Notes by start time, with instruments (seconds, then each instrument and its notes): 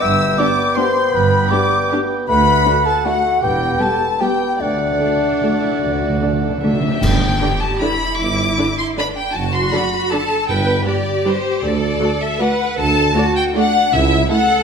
0.01 double bass section G1, cello section G2, bassoon B3, clarinet E5, oboe G5, flute E6, violin section E6
0.38 viola section B3 D4, french horn section B3 G4, violin section G4 D6, clarinet D5, flute D6
0.76 viola section B3 D4, french horn section B3 G4, violin section G4 C6, clarinet C5, flute C6
1.13 double bass section G1, cello section G2, clarinet B4, flute B5, violin section B5
1.51 viola section B3 D4, french horn section B3 G4, violin section G4 D6, clarinet D5, flute D6
1.91 french horn section B3 G4, viola section B3 D4, violin section G4
2.28 cello section D2, double bass section D2, bassoon A3, clarinet B4, oboe F#5, flute B5, violin section B5
2.66 viola section A3 D4, french horn section A3 F#4, violin section F#4
2.85 clarinet A4, flute A5, violin section A5
3.05 viola section A3 D4, bassoon A3, french horn section A3 F#4, clarinet F#4, violin section F#4 F#5, flute F#5, oboe F#5
3.42 double bass section E1, cello section E2, bassoon B3, clarinet G4, flute G5, violin section G5, oboe G5
3.79 viola section G3 B3, french horn section B3 G4, violin section G4 A5, clarinet A4, flute A5
4.20 viola section G3 B3, bassoon B3, french horn section B3 G4, clarinet G4, violin section G4 G5, flute G5, oboe G5
4.60 double bass section D2, cello section D2, timpani D3, bassoon A3, clarinet D4, flute D5, violin section D5, oboe F#5
4.68 timpani D3
4.75 timpani D3
4.84 timpani D3
4.91 timpani D3
5.00 viola section A3 D4, french horn section A3 F#4, violin section D4
5.08 timpani D3
5.16 timpani D3
5.24 timpani D3
5.32 timpani D3
5.41 timpani D3, french horn section A3 F#4, viola section A3 D4
5.49 timpani D3
5.57 timpani D3
5.63 timpani D3, violin section E4
5.72 timpani D3
5.79 cello section D2, double bass section D2, timpani D3, violin section F#4
5.86 timpani D3
5.93 timpani D3
6.01 timpani D3
6.10 timpani D3
6.17 timpani D3
6.21 viola section A3 D4, french horn section A3 F#4, violin section A4
6.26 timpani D3
6.33 timpani D3
6.41 timpani D3
6.50 timpani D3
6.58 timpani D3
6.63 timpani D3, viola section A3 D4, french horn section A3 F#4, violin section E5
6.73 timpani D3
6.81 timpani D3, violin section G4
6.88 timpani D3
7.01 tuba G1, double bass section G1, timpani G2, violin section G5, concert bass drum, crash
7.41 viola section D3 D4, cello section G4, violin section B4 D5
7.61 violin section A5
7.81 viola section D3 D4, cello section E4, violin section B4 D5 B5
8.20 tuba G1, double bass section G1, violin section D6
8.58 viola section D3 D4, violin section B4 D5
8.78 violin section C6
8.97 viola section D3 D4, cello section D4, violin section B4 D5 B5
9.17 violin section G5
9.35 tuba F#1, double bass section F#1, cello section F#4, violin section A5
9.54 violin section C6
9.72 viola section D3 D4, violin section A4 D5 B5
10.11 viola section D3 D4, violin section A4 D5 A5, cello section A4
10.48 tuba G1, double bass section G1, timpani G2, cello section B4, violin section G5
10.86 viola section G3 D4, cello section G4, violin section B4 D5
11.25 viola section G3 D4, violin section B4 C5 D5
11.63 tuba D2, double bass section D2, cello section A4, violin section D5
12.00 viola section A3 F#4, violin section A4 D5
12.21 violin section E5
12.39 viola section A3 F#4, violin section A4 D5 F#5, cello section B4
12.77 tuba D2, double bass section D2, cello section A4, violin section A5
13.14 viola section A3 F#4, cello section F#4, violin section A4 D5
13.36 violin section G5
13.55 viola section A3 F#4, cello section D4, violin section A4 D5 F#5
13.92 double bass section C#2, tuba C#2, cello section E4, violin section E5
14.29 viola section A3 E4, violin section A4 F#5, cello section A4